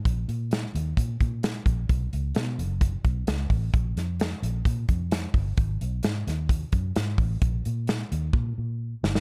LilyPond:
<<
  \new Staff \with { instrumentName = "Fingered electric bass" } { \clef bass \time 4/4 \key gis \dorian \tempo 4 = 130 ais,,8 ais,4 dis,8 ais,8 ais,4 ais,,8 | b,,8 cis,8 b,8 fis,,4 b,,8 cis,8 a,,8 | ais,,8 eis,4 ais,,8 ais,8 eis,4 g,,8 | gis,,8 b,,8 gis,8 dis,4 fis,8 gis,8 a,,8 |
ais,,8 ais,4 dis,8 ais,8 ais,4 g,,8 | }
  \new DrumStaff \with { instrumentName = "Drums" } \drummode { \time 4/4 <hh bd>8 hh8 <hh sn>8 hh8 <hh bd>8 <hh bd>8 <hh sn>8 <hh bd>8 | <hh bd>8 hh8 <hh sn>8 hh8 <hh bd>8 <hh bd>8 <hh sn>8 <hho bd>8 | <hh bd>8 <hh sn>8 <hh sn>8 hh8 <hh bd>8 <hh bd>8 <hh sn>8 <hho bd>8 | <hh bd>8 hh8 <hh sn>8 <hh sn>8 <hh bd>8 <hh bd>8 <hh sn>8 <hho bd>8 |
<hh bd>8 hh8 <hh sn>8 hh8 bd4 r8 sn16 sn16 | }
>>